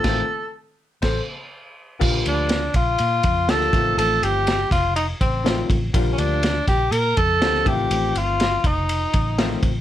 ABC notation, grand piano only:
X:1
M:4/4
L:1/8
Q:1/4=122
K:Bb
V:1 name="Grand piano"
[E,A,CF] z3 [Ac] z3 | [D,F,G,B,F]2 z4 [D,F,G,B,F] [E,F,A,CF]- | [E,F,A,CF]2 z4 [E,F,A,CF] z | [D,F,G,B,F]2 z4 [D,F,G,B,C] [E,F,A,C=EF]- |
[E,F,A,C=EF]2 z4 [_E,F,A,CF] z |]